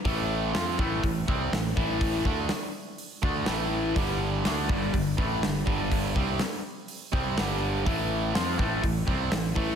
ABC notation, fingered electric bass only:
X:1
M:4/4
L:1/8
Q:1/4=123
K:Am
V:1 name="Fingered electric bass" clef=bass
A,,,2 F,, A,,, A,,, C,, A,,, A,,,- | A,,, D,, z3 D,, A,,,2 | G,,,2 D,, G,,, G,,, A,,, G,,, G,,,- | G,,, C,, z3 C,, G,,,2 |
A,,,2 F,, A,,, A,,, C,, A,,, A,,, |]